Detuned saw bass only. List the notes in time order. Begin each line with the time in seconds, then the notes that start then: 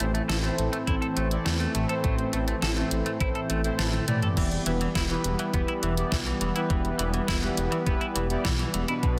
0.00 A1
0.29 A1
0.58 A1
0.87 A1
1.17 A1
1.46 E2
1.75 A1
2.04 A1
2.33 A1
2.62 A1
2.91 A1
3.20 A1
3.50 A1
3.79 A1
4.08 A2
4.37 E1
4.66 E1
4.95 E1
5.25 E1
5.54 E1
5.83 E1
6.12 B1
6.41 E1
6.70 E1
6.99 E1
7.28 E1
7.58 E1
7.87 E1
8.15 E1
8.45 B1
8.74 E1
9.03 B1